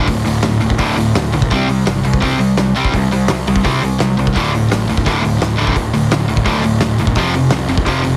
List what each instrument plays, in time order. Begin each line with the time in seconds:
0.07 picked electric bass D1, distorted electric guitar D2 A2, kick, open hi-hat
0.25 picked electric bass D1, distorted electric guitar D2 A2, open hi-hat
0.43 picked electric bass D1, distorted electric guitar D2 A2, snare, open hi-hat
0.61 picked electric bass D1, distorted electric guitar D2 A2, open hi-hat
0.70 kick
0.79 picked electric bass D1, distorted electric guitar D2 A2 D3, kick, open hi-hat
0.97 picked electric bass D1, distorted electric guitar D2 A2, open hi-hat
1.14 picked electric bass D1, distorted electric guitar D2 A2, snare, open hi-hat
1.33 picked electric bass B1, distorted electric guitar D2 A2, open hi-hat
1.42 kick
1.50 picked electric bass C2, distorted electric guitar C3 G3 C4, kick, open hi-hat
1.68 distorted electric guitar C3 G3, open hi-hat
1.86 picked electric bass G1, distorted electric guitar C3 G3, snare, open hi-hat
2.04 picked electric bass C2, distorted electric guitar C3 G3, open hi-hat
2.13 kick
2.20 picked electric bass C2, distorted electric guitar C3 G3 C4, kick, open hi-hat
2.38 picked electric bass C2, distorted electric guitar C3 G3, open hi-hat
2.57 picked electric bass C2, distorted electric guitar C3 G3, snare, open hi-hat
2.75 picked electric bass C2, distorted electric guitar C3 G3 C4, open hi-hat
2.85 kick
2.93 picked electric bass C2, distorted electric guitar C3 G3, kick, open hi-hat
3.11 picked electric bass C2, distorted electric guitar C3 G3, open hi-hat
3.28 picked electric bass C2, distorted electric guitar C3 G3, snare, open hi-hat
3.47 picked electric bass C2, distorted electric guitar C3 G3, open hi-hat
3.56 kick
3.64 picked electric bass C2, distorted electric guitar C3 G3 C4, kick, open hi-hat
3.82 picked electric bass C2, distorted electric guitar C3 G3, open hi-hat
3.99 picked electric bass C2, distorted electric guitar C3 G3, snare, open hi-hat
4.17 picked electric bass C2, distorted electric guitar C3 G3, open hi-hat
4.27 kick
4.33 picked electric bass D1, distorted electric guitar D2 A2 D3, kick, open hi-hat
4.51 distorted electric guitar D2 A2, open hi-hat
4.55 distorted electric guitar A2
4.69 picked electric bass A1, distorted electric guitar D2 A2, snare, open hi-hat
4.88 picked electric bass D1, distorted electric guitar D2 A2, open hi-hat
4.97 kick
5.05 picked electric bass D1, distorted electric guitar D2 A2 D3, kick, open hi-hat
5.20 picked electric bass D1, distorted electric guitar D2 A2
5.25 open hi-hat
5.38 picked electric bass D1, distorted electric guitar D2 A2, snare, open hi-hat
5.56 picked electric bass D1, distorted electric guitar D2 A2 D3, open hi-hat
5.67 kick
5.75 picked electric bass D1, distorted electric guitar D2 A2, kick, open hi-hat
5.93 picked electric bass D1, distorted electric guitar D2 A2, open hi-hat
6.10 picked electric bass D1, distorted electric guitar D2 A2, snare, open hi-hat
6.28 picked electric bass D1, distorted electric guitar D2 A2, open hi-hat
6.37 kick
6.45 picked electric bass D1, distorted electric guitar D2 A2 D3, kick, open hi-hat
6.63 picked electric bass D1, distorted electric guitar D2 A2, open hi-hat
6.81 picked electric bass D1, distorted electric guitar D2 A2, snare, open hi-hat
6.98 picked electric bass F#1, distorted electric guitar D2 A2, open hi-hat
7.07 kick
7.15 picked electric bass F1, distorted electric guitar F2 C3 F3, kick, open hi-hat
7.34 distorted electric guitar F2 C3, open hi-hat
7.50 picked electric bass C2, distorted electric guitar F2 C3, snare, open hi-hat
7.68 picked electric bass F1, distorted electric guitar F2 C3, open hi-hat
7.78 kick
7.86 picked electric bass F1, distorted electric guitar F2 C3 F3, kick, open hi-hat
8.04 picked electric bass F1, distorted electric guitar F2 C3, open hi-hat